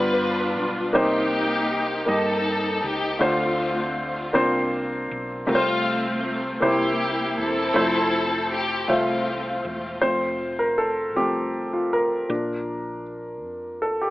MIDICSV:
0, 0, Header, 1, 4, 480
1, 0, Start_track
1, 0, Key_signature, -1, "major"
1, 0, Tempo, 756620
1, 603, Time_signature, 6, 3, 24, 8
1, 8946, End_track
2, 0, Start_track
2, 0, Title_t, "String section"
2, 0, Program_c, 0, 48
2, 0, Note_on_c, 0, 62, 75
2, 0, Note_on_c, 0, 65, 74
2, 0, Note_on_c, 0, 71, 102
2, 429, Note_off_c, 0, 71, 0
2, 581, Note_off_c, 0, 65, 0
2, 584, Note_off_c, 0, 62, 0
2, 613, Note_on_c, 0, 67, 89
2, 614, Note_on_c, 0, 58, 69
2, 614, Note_on_c, 0, 63, 74
2, 1301, Note_off_c, 0, 63, 0
2, 1301, Note_off_c, 0, 67, 0
2, 1302, Note_off_c, 0, 58, 0
2, 1329, Note_on_c, 0, 63, 62
2, 1330, Note_on_c, 0, 69, 89
2, 1801, Note_on_c, 0, 67, 89
2, 1805, Note_off_c, 0, 69, 0
2, 2018, Note_off_c, 0, 63, 0
2, 2040, Note_off_c, 0, 67, 0
2, 2046, Note_on_c, 0, 65, 78
2, 2049, Note_on_c, 0, 60, 58
2, 2052, Note_on_c, 0, 57, 59
2, 2582, Note_off_c, 0, 65, 0
2, 2738, Note_off_c, 0, 60, 0
2, 2740, Note_off_c, 0, 57, 0
2, 3484, Note_on_c, 0, 65, 106
2, 3487, Note_on_c, 0, 60, 78
2, 3489, Note_on_c, 0, 57, 83
2, 3935, Note_off_c, 0, 65, 0
2, 4177, Note_off_c, 0, 57, 0
2, 4177, Note_off_c, 0, 60, 0
2, 4216, Note_on_c, 0, 58, 70
2, 4218, Note_on_c, 0, 64, 73
2, 4227, Note_on_c, 0, 67, 90
2, 4667, Note_off_c, 0, 67, 0
2, 4684, Note_off_c, 0, 64, 0
2, 4692, Note_on_c, 0, 64, 86
2, 4693, Note_on_c, 0, 60, 84
2, 4694, Note_on_c, 0, 69, 100
2, 4901, Note_off_c, 0, 58, 0
2, 5379, Note_off_c, 0, 64, 0
2, 5380, Note_off_c, 0, 60, 0
2, 5380, Note_off_c, 0, 69, 0
2, 5406, Note_on_c, 0, 67, 97
2, 5642, Note_off_c, 0, 67, 0
2, 5645, Note_on_c, 0, 65, 77
2, 5648, Note_on_c, 0, 57, 62
2, 5650, Note_on_c, 0, 60, 60
2, 6182, Note_off_c, 0, 65, 0
2, 6338, Note_off_c, 0, 57, 0
2, 6339, Note_off_c, 0, 60, 0
2, 8946, End_track
3, 0, Start_track
3, 0, Title_t, "Grand piano"
3, 0, Program_c, 1, 0
3, 0, Control_c, 1, 64, 127
3, 0, Note_on_c, 1, 43, 60
3, 0, Note_on_c, 1, 59, 70
3, 0, Note_on_c, 1, 65, 60
3, 0, Note_on_c, 1, 67, 58
3, 0, Note_on_c, 1, 74, 72
3, 463, Note_off_c, 1, 59, 0
3, 465, Note_off_c, 1, 65, 0
3, 467, Note_off_c, 1, 67, 0
3, 469, Note_off_c, 1, 74, 0
3, 576, Note_off_c, 1, 43, 0
3, 590, Note_on_c, 1, 58, 79
3, 596, Note_on_c, 1, 63, 76
3, 598, Note_on_c, 1, 48, 57
3, 598, Note_on_c, 1, 67, 71
3, 602, Note_on_c, 1, 72, 84
3, 612, Control_c, 1, 64, 0
3, 719, Control_c, 1, 64, 127
3, 1180, Note_off_c, 1, 58, 0
3, 1182, Note_off_c, 1, 63, 0
3, 1184, Note_off_c, 1, 67, 0
3, 1185, Note_off_c, 1, 72, 0
3, 1294, Note_off_c, 1, 48, 0
3, 1307, Note_on_c, 1, 58, 68
3, 1313, Note_on_c, 1, 63, 57
3, 1316, Note_on_c, 1, 67, 60
3, 1322, Note_on_c, 1, 75, 80
3, 1897, Note_off_c, 1, 58, 0
3, 1900, Note_off_c, 1, 63, 0
3, 1902, Note_off_c, 1, 67, 0
3, 1905, Note_off_c, 1, 75, 0
3, 2026, Note_on_c, 1, 57, 76
3, 2030, Note_on_c, 1, 62, 71
3, 2034, Note_on_c, 1, 50, 64
3, 2035, Note_on_c, 1, 65, 75
3, 2039, Note_on_c, 1, 72, 89
3, 2049, Control_c, 1, 64, 0
3, 2154, Control_c, 1, 64, 127
3, 2616, Note_off_c, 1, 57, 0
3, 2618, Note_off_c, 1, 62, 0
3, 2621, Note_off_c, 1, 65, 0
3, 2623, Note_off_c, 1, 72, 0
3, 2730, Note_off_c, 1, 50, 0
3, 2748, Note_on_c, 1, 58, 77
3, 2752, Note_on_c, 1, 62, 69
3, 2753, Note_on_c, 1, 60, 78
3, 2755, Note_on_c, 1, 65, 77
3, 2759, Note_on_c, 1, 72, 89
3, 2767, Control_c, 1, 64, 0
3, 2888, Control_c, 1, 64, 127
3, 3337, Note_off_c, 1, 58, 0
3, 3339, Note_off_c, 1, 62, 0
3, 3340, Note_off_c, 1, 65, 0
3, 3342, Note_off_c, 1, 72, 0
3, 3449, Note_off_c, 1, 60, 0
3, 3468, Note_on_c, 1, 57, 78
3, 3471, Note_on_c, 1, 60, 72
3, 3474, Note_on_c, 1, 48, 59
3, 3475, Note_on_c, 1, 65, 73
3, 3479, Note_on_c, 1, 70, 64
3, 3486, Control_c, 1, 64, 0
3, 3520, Note_off_c, 1, 70, 0
3, 3521, Note_on_c, 1, 72, 95
3, 3606, Control_c, 1, 64, 127
3, 4057, Note_off_c, 1, 57, 0
3, 4058, Note_off_c, 1, 60, 0
3, 4060, Note_off_c, 1, 65, 0
3, 4083, Note_off_c, 1, 72, 0
3, 4170, Note_off_c, 1, 48, 0
3, 4190, Note_on_c, 1, 58, 63
3, 4196, Note_on_c, 1, 64, 61
3, 4197, Note_on_c, 1, 48, 62
3, 4198, Note_on_c, 1, 67, 62
3, 4202, Note_on_c, 1, 72, 77
3, 4206, Control_c, 1, 64, 0
3, 4322, Control_c, 1, 64, 127
3, 4778, Note_off_c, 1, 58, 0
3, 4781, Note_off_c, 1, 64, 0
3, 4781, Note_off_c, 1, 67, 0
3, 4784, Note_off_c, 1, 72, 0
3, 4892, Note_off_c, 1, 48, 0
3, 4909, Note_on_c, 1, 57, 81
3, 4917, Note_on_c, 1, 64, 68
3, 4919, Note_on_c, 1, 53, 68
3, 4923, Note_on_c, 1, 72, 84
3, 4924, Control_c, 1, 64, 0
3, 5044, Control_c, 1, 64, 127
3, 5498, Note_off_c, 1, 57, 0
3, 5501, Note_off_c, 1, 64, 0
3, 5503, Note_off_c, 1, 53, 0
3, 5504, Note_off_c, 1, 72, 0
3, 5633, Note_on_c, 1, 57, 64
3, 5638, Note_on_c, 1, 76, 56
3, 5640, Note_on_c, 1, 65, 61
3, 5644, Note_on_c, 1, 72, 71
3, 6220, Note_off_c, 1, 57, 0
3, 6222, Note_off_c, 1, 76, 0
3, 6224, Note_off_c, 1, 65, 0
3, 6225, Note_off_c, 1, 72, 0
3, 6350, Note_on_c, 1, 53, 51
3, 6353, Note_on_c, 1, 57, 42
3, 6354, Note_on_c, 1, 72, 89
3, 6358, Note_on_c, 1, 60, 47
3, 6366, Control_c, 1, 64, 0
3, 6461, Control_c, 1, 64, 127
3, 6673, Note_off_c, 1, 53, 0
3, 6675, Note_off_c, 1, 57, 0
3, 6678, Note_off_c, 1, 60, 0
3, 6718, Note_on_c, 1, 70, 80
3, 6727, Note_off_c, 1, 72, 0
3, 6838, Note_on_c, 1, 69, 76
3, 6842, Note_off_c, 1, 70, 0
3, 6892, Note_off_c, 1, 69, 0
3, 7077, Note_on_c, 1, 53, 44
3, 7080, Note_on_c, 1, 57, 41
3, 7083, Note_on_c, 1, 60, 47
3, 7083, Note_on_c, 1, 67, 79
3, 7295, Note_off_c, 1, 53, 0
3, 7296, Note_off_c, 1, 57, 0
3, 7298, Note_off_c, 1, 60, 0
3, 7443, Note_on_c, 1, 65, 64
3, 7453, Note_off_c, 1, 67, 0
3, 7566, Note_off_c, 1, 65, 0
3, 7568, Note_on_c, 1, 70, 79
3, 7794, Note_on_c, 1, 53, 46
3, 7799, Note_on_c, 1, 58, 46
3, 7804, Note_on_c, 1, 62, 56
3, 7810, Control_c, 1, 64, 0
3, 7933, Control_c, 1, 64, 127
3, 8261, Note_off_c, 1, 70, 0
3, 8766, Note_on_c, 1, 69, 73
3, 8889, Note_off_c, 1, 69, 0
3, 8891, Note_on_c, 1, 67, 66
3, 8946, Note_off_c, 1, 53, 0
3, 8946, Note_off_c, 1, 58, 0
3, 8946, Note_off_c, 1, 62, 0
3, 8946, Note_off_c, 1, 67, 0
3, 8946, End_track
4, 0, Start_track
4, 0, Title_t, "Fingered electric bass"
4, 0, Program_c, 2, 33
4, 0, Note_on_c, 2, 31, 101
4, 365, Note_off_c, 2, 31, 0
4, 365, Note_on_c, 2, 35, 80
4, 585, Note_off_c, 2, 35, 0
4, 605, Note_on_c, 2, 36, 112
4, 1297, Note_off_c, 2, 36, 0
4, 1322, Note_on_c, 2, 43, 90
4, 1775, Note_off_c, 2, 43, 0
4, 1800, Note_on_c, 2, 37, 81
4, 2021, Note_off_c, 2, 37, 0
4, 2033, Note_on_c, 2, 38, 109
4, 2730, Note_off_c, 2, 38, 0
4, 2761, Note_on_c, 2, 36, 98
4, 3214, Note_off_c, 2, 36, 0
4, 3244, Note_on_c, 2, 35, 82
4, 3462, Note_off_c, 2, 35, 0
4, 3481, Note_on_c, 2, 36, 121
4, 4174, Note_off_c, 2, 36, 0
4, 4200, Note_on_c, 2, 36, 96
4, 4653, Note_off_c, 2, 36, 0
4, 4680, Note_on_c, 2, 28, 73
4, 4899, Note_off_c, 2, 28, 0
4, 4917, Note_on_c, 2, 29, 115
4, 5612, Note_off_c, 2, 29, 0
4, 5642, Note_on_c, 2, 36, 88
4, 6095, Note_off_c, 2, 36, 0
4, 6120, Note_on_c, 2, 28, 81
4, 6340, Note_off_c, 2, 28, 0
4, 6363, Note_on_c, 2, 29, 90
4, 7075, Note_off_c, 2, 29, 0
4, 7075, Note_on_c, 2, 36, 76
4, 7773, Note_off_c, 2, 36, 0
4, 7800, Note_on_c, 2, 34, 94
4, 8521, Note_off_c, 2, 34, 0
4, 8521, Note_on_c, 2, 41, 76
4, 8946, Note_off_c, 2, 41, 0
4, 8946, End_track
0, 0, End_of_file